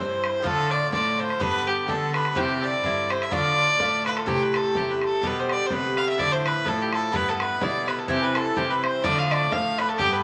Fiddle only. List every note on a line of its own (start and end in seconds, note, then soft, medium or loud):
0.00 0.48 C5 medium
0.46 0.72 A4 loud
0.71 0.92 D5 loud
0.92 1.21 D5 medium
1.20 1.42 C5 loud
1.41 1.69 B4 loud
1.67 1.90 G4 loud
1.89 2.14 A4 medium
2.14 2.38 B4 medium
2.36 2.65 G4 loud
2.63 3.12 D5 loud
3.11 3.24 C5 medium
3.23 3.34 E5 medium
3.32 4.05 D5 loud
4.06 4.18 B4 medium
4.17 4.30 A4 medium
4.28 4.43 G4 loud
4.42 4.57 B4 medium
4.56 4.79 A4 loud
4.77 4.92 G4 medium
4.91 5.02 B4 medium
5.05 5.28 A4 loud
5.27 5.41 B4 loud
5.39 5.54 C5 medium
5.52 5.68 D5 loud
5.66 5.74 C5 medium
5.73 5.99 B4 loud
5.98 6.08 F5 loud
6.09 6.21 E5 loud
6.19 6.33 D5 loud
6.32 6.47 C5 loud
6.46 6.69 B4 loud
6.68 6.83 A4 loud
6.81 6.93 G4 medium
6.94 7.17 A4 loud
7.16 7.30 B4 loud
7.29 7.43 A4 medium
7.41 7.64 B4 loud
7.63 7.90 D5 loud
7.88 8.00 B4 medium
7.99 8.09 A4 medium
8.09 8.25 G4 loud
8.23 8.37 B4 medium
8.36 8.59 A4 medium
8.57 8.71 G4 loud
8.70 8.84 B4 medium
8.83 9.05 C5 loud
9.04 9.20 D5 loud
9.18 9.33 F5 medium
9.32 9.54 D5 loud
9.52 9.80 F5 medium
9.78 9.90 B4 loud
9.89 9.95 A4 medium
9.95 10.14 G4 loud
9.95 9.99 A4 medium
10.12 10.23 B4 medium